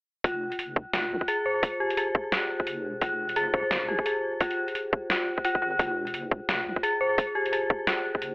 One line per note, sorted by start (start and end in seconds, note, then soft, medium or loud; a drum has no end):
0.24 0.85 F1 medium
0.24 0.92 F4 medium
0.24 kick loud
0.24 closed hi-hat medium
0.52 closed hi-hat soft
0.59 closed hi-hat medium
0.76 kick loud
0.93 1.10 F1 loud
0.93 1.27 F4 medium
0.93 snare loud
0.93 closed hi-hat medium
1.11 1.20 C2 loud
1.21 kick medium
1.28 1.45 G#4 medium
1.28 closed hi-hat medium
1.46 1.57 C5 medium
1.63 kick loud
1.63 closed hi-hat medium
1.80 1.97 G4 medium
1.90 closed hi-hat soft
1.97 2.31 G#4 medium
1.97 closed hi-hat medium
2.15 kick loud
2.32 3.00 F4 medium
2.32 snare loud
2.32 closed hi-hat medium
2.60 kick medium
2.67 3.01 F1 medium
2.67 closed hi-hat medium
3.01 3.63 F1 medium
3.01 3.35 F4 medium
3.01 kick loud
3.01 closed hi-hat medium
3.29 closed hi-hat soft
3.36 3.53 G#4 medium
3.36 closed hi-hat medium
3.54 3.65 C5 medium
3.54 kick loud
3.71 3.87 F1 loud
3.71 snare loud
3.71 closed hi-hat medium
3.88 3.98 C2 medium
3.88 4.05 G4 medium
3.99 kick medium
4.06 4.39 G#4 medium
4.06 closed hi-hat medium
4.40 5.09 F4 medium
4.40 kick loud
4.40 closed hi-hat medium
4.51 closed hi-hat soft
4.68 closed hi-hat soft
4.75 closed hi-hat medium
4.93 kick loud
5.10 5.26 F4 medium
5.10 snare loud
5.10 closed hi-hat medium
5.38 kick medium
5.45 5.61 F4 medium
5.45 closed hi-hat medium
5.55 kick medium
5.62 5.78 G#1 loud
5.62 5.78 F4 medium
5.79 6.40 F1 medium
5.79 6.47 F4 medium
5.79 kick loud
5.79 closed hi-hat medium
6.07 closed hi-hat soft
6.14 closed hi-hat medium
6.31 kick loud
6.49 6.65 F1 loud
6.49 6.82 F4 medium
6.49 snare loud
6.49 closed hi-hat medium
6.66 6.75 C2 medium
6.76 kick medium
6.83 7.00 G#4 loud
6.83 closed hi-hat medium
7.01 7.12 C5 medium
7.18 kick loud
7.18 closed hi-hat medium
7.35 7.52 G4 medium
7.46 closed hi-hat soft
7.53 7.86 G#4 medium
7.53 closed hi-hat medium
7.70 kick loud
7.87 8.35 F4 medium
7.87 snare loud
7.87 closed hi-hat medium
8.15 kick medium
8.22 8.35 F1 medium
8.22 closed hi-hat medium